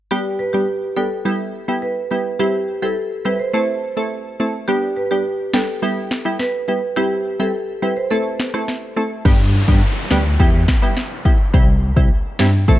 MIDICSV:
0, 0, Header, 1, 6, 480
1, 0, Start_track
1, 0, Tempo, 571429
1, 92, Time_signature, 4, 2, 24, 8
1, 10747, End_track
2, 0, Start_track
2, 0, Title_t, "Marimba"
2, 0, Program_c, 0, 12
2, 92, Note_on_c, 0, 67, 93
2, 199, Note_off_c, 0, 67, 0
2, 329, Note_on_c, 0, 71, 74
2, 437, Note_off_c, 0, 71, 0
2, 447, Note_on_c, 0, 67, 75
2, 556, Note_off_c, 0, 67, 0
2, 810, Note_on_c, 0, 69, 75
2, 918, Note_off_c, 0, 69, 0
2, 1530, Note_on_c, 0, 71, 73
2, 1638, Note_off_c, 0, 71, 0
2, 1770, Note_on_c, 0, 71, 68
2, 1878, Note_off_c, 0, 71, 0
2, 2011, Note_on_c, 0, 67, 102
2, 2225, Note_off_c, 0, 67, 0
2, 2373, Note_on_c, 0, 69, 81
2, 2479, Note_off_c, 0, 69, 0
2, 2729, Note_on_c, 0, 71, 77
2, 2837, Note_off_c, 0, 71, 0
2, 2852, Note_on_c, 0, 72, 70
2, 2959, Note_off_c, 0, 72, 0
2, 2969, Note_on_c, 0, 72, 96
2, 3309, Note_off_c, 0, 72, 0
2, 3929, Note_on_c, 0, 67, 102
2, 4037, Note_off_c, 0, 67, 0
2, 4171, Note_on_c, 0, 71, 75
2, 4278, Note_off_c, 0, 71, 0
2, 4291, Note_on_c, 0, 67, 78
2, 4398, Note_off_c, 0, 67, 0
2, 4653, Note_on_c, 0, 69, 82
2, 4759, Note_off_c, 0, 69, 0
2, 5373, Note_on_c, 0, 71, 81
2, 5479, Note_off_c, 0, 71, 0
2, 5611, Note_on_c, 0, 71, 72
2, 5718, Note_off_c, 0, 71, 0
2, 5850, Note_on_c, 0, 67, 106
2, 6064, Note_off_c, 0, 67, 0
2, 6214, Note_on_c, 0, 69, 77
2, 6320, Note_off_c, 0, 69, 0
2, 6572, Note_on_c, 0, 71, 73
2, 6679, Note_off_c, 0, 71, 0
2, 6692, Note_on_c, 0, 72, 70
2, 6799, Note_off_c, 0, 72, 0
2, 6810, Note_on_c, 0, 69, 90
2, 7149, Note_off_c, 0, 69, 0
2, 10747, End_track
3, 0, Start_track
3, 0, Title_t, "Synth stab"
3, 0, Program_c, 1, 62
3, 92, Note_on_c, 1, 55, 93
3, 94, Note_on_c, 1, 59, 83
3, 95, Note_on_c, 1, 62, 81
3, 97, Note_on_c, 1, 67, 104
3, 423, Note_off_c, 1, 55, 0
3, 424, Note_off_c, 1, 59, 0
3, 425, Note_off_c, 1, 62, 0
3, 426, Note_off_c, 1, 67, 0
3, 451, Note_on_c, 1, 55, 74
3, 454, Note_on_c, 1, 59, 67
3, 455, Note_on_c, 1, 62, 69
3, 456, Note_on_c, 1, 67, 83
3, 554, Note_off_c, 1, 55, 0
3, 556, Note_off_c, 1, 59, 0
3, 556, Note_off_c, 1, 62, 0
3, 557, Note_off_c, 1, 67, 0
3, 810, Note_on_c, 1, 55, 73
3, 811, Note_on_c, 1, 59, 69
3, 814, Note_on_c, 1, 62, 69
3, 816, Note_on_c, 1, 67, 82
3, 914, Note_off_c, 1, 55, 0
3, 914, Note_off_c, 1, 59, 0
3, 915, Note_off_c, 1, 62, 0
3, 916, Note_off_c, 1, 67, 0
3, 1051, Note_on_c, 1, 55, 95
3, 1053, Note_on_c, 1, 59, 86
3, 1055, Note_on_c, 1, 64, 82
3, 1056, Note_on_c, 1, 67, 97
3, 1383, Note_off_c, 1, 55, 0
3, 1384, Note_off_c, 1, 59, 0
3, 1385, Note_off_c, 1, 64, 0
3, 1386, Note_off_c, 1, 67, 0
3, 1412, Note_on_c, 1, 55, 76
3, 1413, Note_on_c, 1, 59, 68
3, 1415, Note_on_c, 1, 64, 68
3, 1416, Note_on_c, 1, 67, 82
3, 1743, Note_off_c, 1, 55, 0
3, 1744, Note_off_c, 1, 59, 0
3, 1745, Note_off_c, 1, 64, 0
3, 1746, Note_off_c, 1, 67, 0
3, 1772, Note_on_c, 1, 55, 72
3, 1774, Note_on_c, 1, 59, 65
3, 1776, Note_on_c, 1, 64, 66
3, 1777, Note_on_c, 1, 67, 78
3, 1993, Note_off_c, 1, 55, 0
3, 1994, Note_off_c, 1, 59, 0
3, 1995, Note_off_c, 1, 64, 0
3, 1996, Note_off_c, 1, 67, 0
3, 2011, Note_on_c, 1, 55, 92
3, 2013, Note_on_c, 1, 60, 88
3, 2014, Note_on_c, 1, 64, 86
3, 2016, Note_on_c, 1, 67, 100
3, 2343, Note_off_c, 1, 55, 0
3, 2344, Note_off_c, 1, 60, 0
3, 2345, Note_off_c, 1, 64, 0
3, 2346, Note_off_c, 1, 67, 0
3, 2370, Note_on_c, 1, 55, 72
3, 2373, Note_on_c, 1, 60, 69
3, 2374, Note_on_c, 1, 64, 69
3, 2375, Note_on_c, 1, 67, 84
3, 2474, Note_off_c, 1, 55, 0
3, 2475, Note_off_c, 1, 60, 0
3, 2476, Note_off_c, 1, 64, 0
3, 2476, Note_off_c, 1, 67, 0
3, 2731, Note_on_c, 1, 55, 76
3, 2732, Note_on_c, 1, 60, 69
3, 2734, Note_on_c, 1, 64, 72
3, 2736, Note_on_c, 1, 67, 85
3, 2834, Note_off_c, 1, 55, 0
3, 2835, Note_off_c, 1, 60, 0
3, 2836, Note_off_c, 1, 64, 0
3, 2837, Note_off_c, 1, 67, 0
3, 2969, Note_on_c, 1, 57, 93
3, 2972, Note_on_c, 1, 60, 82
3, 2972, Note_on_c, 1, 64, 85
3, 2975, Note_on_c, 1, 69, 97
3, 3302, Note_off_c, 1, 57, 0
3, 3303, Note_off_c, 1, 60, 0
3, 3304, Note_off_c, 1, 64, 0
3, 3305, Note_off_c, 1, 69, 0
3, 3332, Note_on_c, 1, 57, 74
3, 3334, Note_on_c, 1, 60, 70
3, 3335, Note_on_c, 1, 64, 71
3, 3337, Note_on_c, 1, 69, 87
3, 3663, Note_off_c, 1, 57, 0
3, 3664, Note_off_c, 1, 60, 0
3, 3665, Note_off_c, 1, 64, 0
3, 3666, Note_off_c, 1, 69, 0
3, 3693, Note_on_c, 1, 57, 71
3, 3694, Note_on_c, 1, 60, 67
3, 3696, Note_on_c, 1, 64, 67
3, 3698, Note_on_c, 1, 69, 79
3, 3913, Note_off_c, 1, 57, 0
3, 3914, Note_off_c, 1, 60, 0
3, 3915, Note_off_c, 1, 64, 0
3, 3916, Note_off_c, 1, 69, 0
3, 3931, Note_on_c, 1, 55, 93
3, 3933, Note_on_c, 1, 59, 86
3, 3935, Note_on_c, 1, 62, 83
3, 3936, Note_on_c, 1, 67, 103
3, 4263, Note_off_c, 1, 55, 0
3, 4264, Note_off_c, 1, 59, 0
3, 4265, Note_off_c, 1, 62, 0
3, 4265, Note_off_c, 1, 67, 0
3, 4292, Note_on_c, 1, 55, 76
3, 4294, Note_on_c, 1, 59, 71
3, 4296, Note_on_c, 1, 62, 68
3, 4298, Note_on_c, 1, 67, 81
3, 4394, Note_off_c, 1, 55, 0
3, 4396, Note_off_c, 1, 59, 0
3, 4396, Note_off_c, 1, 62, 0
3, 4397, Note_off_c, 1, 67, 0
3, 4651, Note_on_c, 1, 55, 76
3, 4653, Note_on_c, 1, 59, 68
3, 4655, Note_on_c, 1, 62, 71
3, 4656, Note_on_c, 1, 67, 86
3, 4754, Note_off_c, 1, 55, 0
3, 4755, Note_off_c, 1, 59, 0
3, 4756, Note_off_c, 1, 62, 0
3, 4756, Note_off_c, 1, 67, 0
3, 4891, Note_on_c, 1, 55, 92
3, 4893, Note_on_c, 1, 59, 84
3, 4894, Note_on_c, 1, 64, 81
3, 4896, Note_on_c, 1, 67, 100
3, 5223, Note_off_c, 1, 55, 0
3, 5224, Note_off_c, 1, 59, 0
3, 5224, Note_off_c, 1, 64, 0
3, 5226, Note_off_c, 1, 67, 0
3, 5251, Note_on_c, 1, 55, 77
3, 5252, Note_on_c, 1, 59, 71
3, 5254, Note_on_c, 1, 64, 70
3, 5256, Note_on_c, 1, 67, 84
3, 5354, Note_off_c, 1, 55, 0
3, 5354, Note_off_c, 1, 59, 0
3, 5355, Note_off_c, 1, 64, 0
3, 5357, Note_off_c, 1, 67, 0
3, 5611, Note_on_c, 1, 55, 76
3, 5613, Note_on_c, 1, 59, 67
3, 5614, Note_on_c, 1, 64, 66
3, 5616, Note_on_c, 1, 67, 81
3, 5714, Note_off_c, 1, 55, 0
3, 5715, Note_off_c, 1, 59, 0
3, 5716, Note_off_c, 1, 64, 0
3, 5717, Note_off_c, 1, 67, 0
3, 5852, Note_on_c, 1, 55, 94
3, 5853, Note_on_c, 1, 60, 85
3, 5855, Note_on_c, 1, 64, 87
3, 5855, Note_on_c, 1, 67, 100
3, 6183, Note_off_c, 1, 55, 0
3, 6184, Note_off_c, 1, 60, 0
3, 6185, Note_off_c, 1, 64, 0
3, 6185, Note_off_c, 1, 67, 0
3, 6212, Note_on_c, 1, 55, 74
3, 6213, Note_on_c, 1, 60, 68
3, 6215, Note_on_c, 1, 64, 70
3, 6216, Note_on_c, 1, 67, 83
3, 6314, Note_off_c, 1, 55, 0
3, 6315, Note_off_c, 1, 60, 0
3, 6316, Note_off_c, 1, 64, 0
3, 6317, Note_off_c, 1, 67, 0
3, 6571, Note_on_c, 1, 55, 79
3, 6572, Note_on_c, 1, 60, 70
3, 6574, Note_on_c, 1, 64, 73
3, 6576, Note_on_c, 1, 67, 86
3, 6674, Note_off_c, 1, 55, 0
3, 6674, Note_off_c, 1, 60, 0
3, 6676, Note_off_c, 1, 64, 0
3, 6677, Note_off_c, 1, 67, 0
3, 6811, Note_on_c, 1, 57, 92
3, 6812, Note_on_c, 1, 60, 83
3, 6814, Note_on_c, 1, 64, 83
3, 6816, Note_on_c, 1, 69, 99
3, 7143, Note_off_c, 1, 57, 0
3, 7144, Note_off_c, 1, 60, 0
3, 7144, Note_off_c, 1, 64, 0
3, 7145, Note_off_c, 1, 69, 0
3, 7173, Note_on_c, 1, 57, 74
3, 7174, Note_on_c, 1, 60, 69
3, 7175, Note_on_c, 1, 64, 67
3, 7177, Note_on_c, 1, 69, 84
3, 7504, Note_off_c, 1, 57, 0
3, 7504, Note_off_c, 1, 60, 0
3, 7505, Note_off_c, 1, 64, 0
3, 7506, Note_off_c, 1, 69, 0
3, 7530, Note_on_c, 1, 57, 74
3, 7532, Note_on_c, 1, 60, 67
3, 7534, Note_on_c, 1, 64, 66
3, 7535, Note_on_c, 1, 69, 81
3, 7752, Note_off_c, 1, 57, 0
3, 7753, Note_off_c, 1, 60, 0
3, 7754, Note_off_c, 1, 64, 0
3, 7754, Note_off_c, 1, 69, 0
3, 7770, Note_on_c, 1, 55, 95
3, 7772, Note_on_c, 1, 59, 82
3, 7774, Note_on_c, 1, 62, 89
3, 7775, Note_on_c, 1, 67, 102
3, 7874, Note_off_c, 1, 55, 0
3, 7875, Note_off_c, 1, 59, 0
3, 7876, Note_off_c, 1, 62, 0
3, 7876, Note_off_c, 1, 67, 0
3, 8131, Note_on_c, 1, 55, 76
3, 8132, Note_on_c, 1, 59, 71
3, 8135, Note_on_c, 1, 62, 69
3, 8135, Note_on_c, 1, 67, 85
3, 8234, Note_off_c, 1, 55, 0
3, 8235, Note_off_c, 1, 59, 0
3, 8236, Note_off_c, 1, 62, 0
3, 8236, Note_off_c, 1, 67, 0
3, 8492, Note_on_c, 1, 55, 76
3, 8493, Note_on_c, 1, 59, 69
3, 8495, Note_on_c, 1, 62, 74
3, 8497, Note_on_c, 1, 67, 82
3, 8595, Note_off_c, 1, 55, 0
3, 8595, Note_off_c, 1, 59, 0
3, 8596, Note_off_c, 1, 62, 0
3, 8597, Note_off_c, 1, 67, 0
3, 8732, Note_on_c, 1, 55, 92
3, 8734, Note_on_c, 1, 59, 81
3, 8734, Note_on_c, 1, 64, 84
3, 8736, Note_on_c, 1, 67, 107
3, 9063, Note_off_c, 1, 55, 0
3, 9064, Note_off_c, 1, 59, 0
3, 9064, Note_off_c, 1, 64, 0
3, 9065, Note_off_c, 1, 67, 0
3, 9090, Note_on_c, 1, 55, 75
3, 9092, Note_on_c, 1, 59, 70
3, 9094, Note_on_c, 1, 64, 73
3, 9096, Note_on_c, 1, 67, 83
3, 9194, Note_off_c, 1, 55, 0
3, 9195, Note_off_c, 1, 59, 0
3, 9196, Note_off_c, 1, 64, 0
3, 9197, Note_off_c, 1, 67, 0
3, 9450, Note_on_c, 1, 55, 75
3, 9452, Note_on_c, 1, 59, 68
3, 9453, Note_on_c, 1, 64, 69
3, 9455, Note_on_c, 1, 67, 83
3, 9554, Note_off_c, 1, 55, 0
3, 9554, Note_off_c, 1, 59, 0
3, 9555, Note_off_c, 1, 64, 0
3, 9556, Note_off_c, 1, 67, 0
3, 9689, Note_on_c, 1, 55, 97
3, 9690, Note_on_c, 1, 60, 86
3, 9693, Note_on_c, 1, 64, 84
3, 9694, Note_on_c, 1, 67, 109
3, 9793, Note_off_c, 1, 55, 0
3, 9794, Note_off_c, 1, 60, 0
3, 9795, Note_off_c, 1, 64, 0
3, 9795, Note_off_c, 1, 67, 0
3, 10049, Note_on_c, 1, 55, 78
3, 10051, Note_on_c, 1, 60, 68
3, 10052, Note_on_c, 1, 64, 70
3, 10054, Note_on_c, 1, 67, 86
3, 10153, Note_off_c, 1, 55, 0
3, 10154, Note_off_c, 1, 60, 0
3, 10155, Note_off_c, 1, 64, 0
3, 10156, Note_off_c, 1, 67, 0
3, 10410, Note_on_c, 1, 55, 80
3, 10412, Note_on_c, 1, 60, 70
3, 10414, Note_on_c, 1, 64, 71
3, 10416, Note_on_c, 1, 67, 86
3, 10514, Note_off_c, 1, 55, 0
3, 10514, Note_off_c, 1, 60, 0
3, 10515, Note_off_c, 1, 64, 0
3, 10517, Note_off_c, 1, 67, 0
3, 10651, Note_on_c, 1, 57, 97
3, 10653, Note_on_c, 1, 60, 86
3, 10654, Note_on_c, 1, 64, 88
3, 10656, Note_on_c, 1, 69, 107
3, 10747, Note_off_c, 1, 57, 0
3, 10747, Note_off_c, 1, 60, 0
3, 10747, Note_off_c, 1, 64, 0
3, 10747, Note_off_c, 1, 69, 0
3, 10747, End_track
4, 0, Start_track
4, 0, Title_t, "Tine electric piano"
4, 0, Program_c, 2, 4
4, 7772, Note_on_c, 2, 43, 100
4, 8081, Note_off_c, 2, 43, 0
4, 8133, Note_on_c, 2, 43, 94
4, 8236, Note_off_c, 2, 43, 0
4, 8493, Note_on_c, 2, 38, 86
4, 8699, Note_off_c, 2, 38, 0
4, 8734, Note_on_c, 2, 40, 102
4, 8939, Note_off_c, 2, 40, 0
4, 9692, Note_on_c, 2, 36, 105
4, 10000, Note_off_c, 2, 36, 0
4, 10053, Note_on_c, 2, 36, 95
4, 10155, Note_off_c, 2, 36, 0
4, 10414, Note_on_c, 2, 43, 91
4, 10619, Note_off_c, 2, 43, 0
4, 10653, Note_on_c, 2, 33, 97
4, 10747, Note_off_c, 2, 33, 0
4, 10747, End_track
5, 0, Start_track
5, 0, Title_t, "Downlifter"
5, 0, Program_c, 3, 103
5, 7772, Note_on_c, 3, 60, 85
5, 10747, Note_off_c, 3, 60, 0
5, 10747, End_track
6, 0, Start_track
6, 0, Title_t, "Drums"
6, 4650, Note_on_c, 9, 38, 109
6, 4734, Note_off_c, 9, 38, 0
6, 5133, Note_on_c, 9, 38, 106
6, 5217, Note_off_c, 9, 38, 0
6, 5371, Note_on_c, 9, 38, 65
6, 5455, Note_off_c, 9, 38, 0
6, 7052, Note_on_c, 9, 38, 106
6, 7136, Note_off_c, 9, 38, 0
6, 7172, Note_on_c, 9, 37, 88
6, 7256, Note_off_c, 9, 37, 0
6, 7293, Note_on_c, 9, 38, 64
6, 7377, Note_off_c, 9, 38, 0
6, 7772, Note_on_c, 9, 49, 92
6, 7773, Note_on_c, 9, 36, 123
6, 7856, Note_off_c, 9, 49, 0
6, 7857, Note_off_c, 9, 36, 0
6, 8133, Note_on_c, 9, 36, 87
6, 8217, Note_off_c, 9, 36, 0
6, 8489, Note_on_c, 9, 38, 110
6, 8573, Note_off_c, 9, 38, 0
6, 8733, Note_on_c, 9, 36, 90
6, 8817, Note_off_c, 9, 36, 0
6, 8972, Note_on_c, 9, 38, 109
6, 8974, Note_on_c, 9, 36, 90
6, 9056, Note_off_c, 9, 38, 0
6, 9058, Note_off_c, 9, 36, 0
6, 9212, Note_on_c, 9, 38, 65
6, 9296, Note_off_c, 9, 38, 0
6, 9454, Note_on_c, 9, 36, 94
6, 9538, Note_off_c, 9, 36, 0
6, 9692, Note_on_c, 9, 36, 118
6, 9776, Note_off_c, 9, 36, 0
6, 10052, Note_on_c, 9, 36, 84
6, 10136, Note_off_c, 9, 36, 0
6, 10409, Note_on_c, 9, 38, 110
6, 10493, Note_off_c, 9, 38, 0
6, 10653, Note_on_c, 9, 36, 88
6, 10737, Note_off_c, 9, 36, 0
6, 10747, End_track
0, 0, End_of_file